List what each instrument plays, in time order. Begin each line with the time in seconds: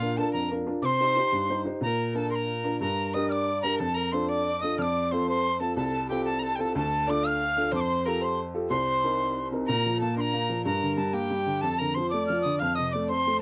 Already playing: upright piano A#2, fiddle F4, tin whistle F5
0.02 upright piano D4 F4 A#4
0.17 upright piano D4 F4 A#4, fiddle A4, tin whistle A5
0.33 upright piano F2, fiddle A#4, tin whistle A#5
0.51 upright piano D4 F4 A#4
0.67 upright piano D4 F4 A#4
0.82 upright piano C3, fiddle C5, tin whistle C6 D6
1.00 upright piano D#4 G4 C5
1.16 upright piano D#4 G4 C5
1.32 upright piano G2
1.49 upright piano D#4 G4 C5
1.65 upright piano D#4 G4 C5
1.81 upright piano A#2, fiddle A#4, tin whistle A#5
2.12 upright piano D4 F4 A#4, fiddle A4 A#4, tin whistle A5
2.30 fiddle A#4, tin whistle C6
2.35 tin whistle A#5
2.64 upright piano D4 F4 A#4
2.80 upright piano G2, fiddle A#4, tin whistle A#5
3.14 upright piano D4 G4 A#4, fiddle D#5, tin whistle D#6
3.29 fiddle D5, tin whistle D6 F6
3.62 upright piano D4 G4 A#4, fiddle A#4, tin whistle A#5
3.78 upright piano F2, fiddle A4, tin whistle A5
3.94 fiddle A#4, tin whistle A#5
4.12 upright piano D4 F4 A4, fiddle C5, tin whistle C6
4.29 fiddle D5, tin whistle D6
4.46 fiddle D5
4.61 upright piano D4 F4 A4, fiddle D#5, tin whistle D#6
4.78 upright piano F2, fiddle D5, tin whistle F6
4.82 tin whistle D6
5.11 upright piano C4 F4 A4, fiddle C5, tin whistle C6
5.27 fiddle C5, tin whistle C6
5.60 upright piano C4 F4 A4, fiddle A4, tin whistle A5
5.76 upright piano C2, fiddle A4, tin whistle A5
6.09 upright piano C4 F4 A4, fiddle G4, tin whistle G5
6.25 fiddle A4, tin whistle A5
6.39 tin whistle A#5
6.43 fiddle A4, tin whistle A5
6.56 upright piano C4 F4 A4, fiddle A4, tin whistle G5
6.61 tin whistle A5
6.74 upright piano D2, fiddle A4, tin whistle A5
7.07 upright piano D4 F4 A4, fiddle D5, tin whistle D6
7.24 fiddle F5, tin whistle F6
7.56 upright piano D4 F4 A4
7.72 upright piano F2, fiddle C5, tin whistle D6
7.80 tin whistle C6
8.06 upright piano F4 G4 A4, fiddle A#4, tin whistle A#5
8.21 fiddle C5, tin whistle C6
8.54 upright piano F4 G4 A4
8.70 upright piano C2, fiddle C5, tin whistle C6
9.04 upright piano C4 D#4 A#4
9.51 upright piano C4 D#4 A#4
9.67 upright piano A#2, fiddle A#4, tin whistle A#5
9.86 upright piano F3
9.99 upright piano A#3, fiddle A4, tin whistle A5
10.16 upright piano D4, fiddle A#4, tin whistle C6
10.21 tin whistle A#5
10.33 upright piano A#3
10.49 upright piano F3
10.65 upright piano G2, fiddle A#4, tin whistle A#5
10.82 upright piano D3
10.97 upright piano G3, tin whistle A5
11.13 upright piano A#3, fiddle G4, tin whistle G5
11.30 upright piano G3
11.46 upright piano D3
11.61 upright piano F2, fiddle A4, tin whistle A5
11.79 upright piano D3, fiddle A#4, tin whistle A#5
11.95 upright piano F3, fiddle C5, tin whistle C6
12.10 upright piano A3, fiddle D5, tin whistle D6
12.27 upright piano F3, tin whistle F6
12.42 upright piano D3, tin whistle D#6
12.59 upright piano F2, fiddle F5, tin whistle F6
12.75 upright piano C3, fiddle D#5, tin whistle D#6
12.91 upright piano A3, fiddle D5, tin whistle D6
13.08 upright piano C4, fiddle C5, tin whistle C6
13.27 upright piano A3